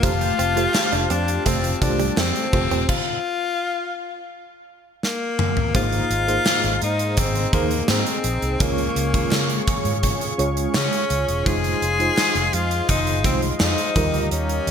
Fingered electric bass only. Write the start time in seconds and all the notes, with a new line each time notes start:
0.03 F1
0.39 F1
0.93 F1
1.10 F2
1.46 F1
1.82 C2
2.17 F2
2.53 F1
2.71 E1
5.75 G#1
6.10 G#1
6.64 G#1
6.82 G#2
7.18 G#1
7.53 D#2
7.89 G#2
8.24 A#1
8.42 C2
8.60 C#2
8.96 C#2
9.32 C#3
9.85 G#2
10.39 C#2
10.75 C#3
11.10 C#2
11.28 E1
11.46 F1
11.82 F1
12.35 F1
12.53 F2
12.89 F1
13.24 C2
13.60 F2
13.96 D#2
14.14 D2
14.32 D#2
14.67 D#2